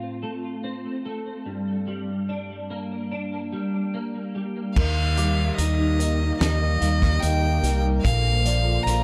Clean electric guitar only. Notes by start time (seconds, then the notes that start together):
Already playing: A2 A3 C4 F4
0.23 A3
0.64 C4
1.06 A3
1.46 G2
1.87 G3
2.29 D4
2.70 A#3
3.12 D4
3.52 G3
3.94 A#3
4.35 G3
4.77 D#3
5.17 G3
5.58 D#4
5.99 A#3
6.39 D#4
6.81 G3
7.22 A#3
7.63 G3
8.04 A#2
8.45 F3
8.86 F4